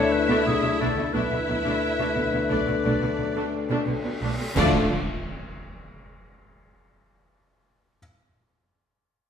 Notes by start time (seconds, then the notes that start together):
Already playing: D2 A3 D4 E4 C#5 E5
0.12 B4
0.29 B2 A3 D4
0.46 B1 B2 D3 A3 G#4
0.62 B2 F#3 B3
0.80 B1 B2 A3 D4 A4
0.96 B2 D3 A3
1.13 B1 D2 B2 A3 D4 E4 B4 E5, reverse cymbal
1.30 B2 D3 A3
1.47 B1 B2 F#3 B3
1.64 B2 A3 D4
1.99 B2 A3 D4
2.15 B1 B2 D3 A3
2.32 B2 F#3 B3
2.49 B1 B2 A3 D4 D5
2.67 B2 D3 A3
2.84 B1 B2 A3 D4
3.01 B2 D3 A3
3.19 B1 B2 F#3 B3
3.35 B2 A3 D4
3.70 B2 A3 D4
3.87 B1 B2 D3 A3
4.04 B2 F#3 B3
4.21 B1 B2 A3 D4
4.38 B2 D3 A3
4.55 D2 D3 A3 F4 A4 D5, concert bass drum, crash, impact